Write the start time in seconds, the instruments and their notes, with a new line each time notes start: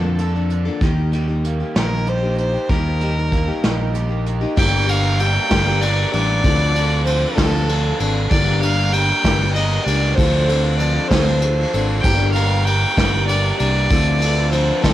Already playing: fingered electric bass F2, steel-string acoustic guitar A#2 D3 F3 A#3 D4 A4, overdriven electric guitar A#2 D3 A#3, fiddle A4
0.19 steel-string acoustic guitar F3 A#3 D4 A4, closed hi-hat
0.35 steel-string acoustic guitar F3 A#3 D4 A4
0.50 overdriven electric guitar D4, closed hi-hat
0.65 steel-string acoustic guitar F3 A#3 D4 A4
0.81 fingered electric bass D#2, steel-string acoustic guitar D#3 G3 A#3 D#4 G4, kick, closed hi-hat
1.11 steel-string acoustic guitar G3 A#3 D#4 G4, closed hi-hat
1.27 steel-string acoustic guitar A#3 D#4 G4
1.44 overdriven electric guitar A#3, closed hi-hat
1.60 steel-string acoustic guitar A#3 D#4 G4
1.75 fingered electric bass A#1, steel-string acoustic guitar D#3 G3 A#3 D#4 G4, fiddle A#4, snare, closed hi-hat
2.07 steel-string acoustic guitar G3 A#3 D#4 G4, fiddle C5, closed hi-hat
2.23 steel-string acoustic guitar A#3 D#4 G4
2.38 overdriven electric guitar D#4, fiddle C5, closed hi-hat
2.54 steel-string acoustic guitar A#3 D#4 G4
2.69 fingered electric bass D#2, steel-string acoustic guitar D#3 G3 A#3 D#4 G4, fiddle A#4, kick, closed hi-hat
3.01 steel-string acoustic guitar G3 A#3 D#4 G4, closed hi-hat
3.16 steel-string acoustic guitar A#3 D#4 G4
3.32 overdriven electric guitar A#3, kick, closed hi-hat
3.48 steel-string acoustic guitar A#3 D#4 G4
3.63 fingered electric bass A#1, steel-string acoustic guitar D#3 G3 A#3 D#4 G4, snare, closed hi-hat
3.93 steel-string acoustic guitar G3 A#3 D#4 G4, closed hi-hat
4.09 steel-string acoustic guitar A#3 D#4 G4
4.26 overdriven electric guitar D#4, closed hi-hat
4.41 steel-string acoustic guitar A#3 D#4 G4
4.56 fingered electric bass G1, steel-string acoustic guitar G2 D3 G3 A#3 D4 G4, harmonium G3 A#3 D4 A#4, fiddle G5, kick, crash
4.60 overdriven electric guitar A#4
4.87 steel-string acoustic guitar G3 A#3 D4 G4, overdriven electric guitar A#4, fiddle F5, ride
5.18 steel-string acoustic guitar G3 A#3 D4 G4, fiddle G5, ride
5.22 overdriven electric guitar A#4
5.50 fingered electric bass G1, steel-string acoustic guitar G2 D3 G3 A#3 D4 G4, overdriven electric guitar A#4, kick, snare, ride
5.80 steel-string acoustic guitar G3 A#3 D4 G4, fiddle D5, ride
5.84 overdriven electric guitar A#4
6.12 fingered electric bass A1, steel-string acoustic guitar G3 A#3 D4 G4, overdriven electric guitar A#4, fiddle D5, ride
6.43 fingered electric bass D2, steel-string acoustic guitar D3 F3 C4 D4 A4, harmonium F3 C4 D4 A4, overdriven electric guitar F4, kick, ride
6.73 steel-string acoustic guitar C4 D4 A4, ride
6.77 overdriven electric guitar F4
7.04 overdriven electric guitar D3, steel-string acoustic guitar F3 C4 D4 A4, fiddle C5, ride
7.08 overdriven electric guitar F4
7.35 fingered electric bass D2, steel-string acoustic guitar D3 F3 C4 D4 A4, overdriven electric guitar F4, fiddle A4, kick, snare, ride
7.67 overdriven electric guitar D3 F4, steel-string acoustic guitar F3 C4 D4 A4, ride
7.98 fingered electric bass G#1, steel-string acoustic guitar C4 D4 A4, overdriven electric guitar F4, ride
8.30 fingered electric bass G1, steel-string acoustic guitar G2 D3 G3 A#3 D4 G4, harmonium G3, overdriven electric guitar A#4, fiddle D5, kick, ride
8.61 steel-string acoustic guitar G3 A#3 D4 G4, overdriven electric guitar A#4, fiddle F5, ride
8.93 steel-string acoustic guitar G3 A#3 D4 G4, overdriven electric guitar A#4, fiddle G5, ride
9.24 fingered electric bass G1, steel-string acoustic guitar G2 D3 G3 A#3 D4 G4, overdriven electric guitar A#4, kick, snare, ride
9.53 steel-string acoustic guitar G3 A#3, overdriven electric guitar D4 A#4, fiddle D#5, ride
9.58 steel-string acoustic guitar G4
9.84 fingered electric bass C#2, steel-string acoustic guitar G4, overdriven electric guitar A#4, fiddle D5, ride
9.88 steel-string acoustic guitar G3 A#3 D4
10.15 fingered electric bass D2, steel-string acoustic guitar D3 F3 C4 D4, harmonium F3 C4 A4, overdriven electric guitar F4, fiddle C5, kick, ride
10.19 steel-string acoustic guitar A4
10.49 steel-string acoustic guitar C4 D4 A4, overdriven electric guitar F4, ride
10.77 overdriven electric guitar D3 F4, steel-string acoustic guitar F3 C4 D4, fiddle D5, ride
10.81 steel-string acoustic guitar A4
11.08 fingered electric bass D2, steel-string acoustic guitar C4 D4 A4, overdriven electric guitar F4, fiddle C5, kick, snare, ride
11.12 steel-string acoustic guitar D3 F3
11.41 overdriven electric guitar D3 F4, steel-string acoustic guitar F3 C4 D4 A4, ride
11.73 fingered electric bass G#1, steel-string acoustic guitar C4 D4 A4, overdriven electric guitar F4, ride
12.01 fingered electric bass G1, steel-string acoustic guitar G2 D3 G3, harmonium A#3 A#4, fiddle G5, kick, crash
12.05 harmonium G3, steel-string acoustic guitar A#3 D4 G4, overdriven electric guitar A#4
12.32 steel-string acoustic guitar D4 G4, overdriven electric guitar A#4, fiddle F5, ride
12.37 steel-string acoustic guitar G3 A#3
12.64 steel-string acoustic guitar G3 A#3 D4 G4, overdriven electric guitar A#4, fiddle G5, ride
12.97 fingered electric bass G1, steel-string acoustic guitar G2 D3 G3 A#3 D4 G4, overdriven electric guitar A#4, kick, snare, ride
13.27 steel-string acoustic guitar G3 A#3 D4 G4, overdriven electric guitar A#4, fiddle D5, ride
13.58 fingered electric bass C2, steel-string acoustic guitar G3 A#3 D4 G4, overdriven electric guitar A#4, fiddle D5, ride
13.90 fingered electric bass D2, steel-string acoustic guitar D3 F3 C4 D4 A4, harmonium F3 C4 A4, overdriven electric guitar F4, kick, ride
14.21 steel-string acoustic guitar C4 D4 A4, overdriven electric guitar F4, ride
14.51 overdriven electric guitar D3 F4, steel-string acoustic guitar F3 C4 D4 A4, fiddle C5, ride
14.82 fingered electric bass D2, steel-string acoustic guitar D3 F3 C4 D4 A4, overdriven electric guitar F4, fiddle A4, kick, snare, ride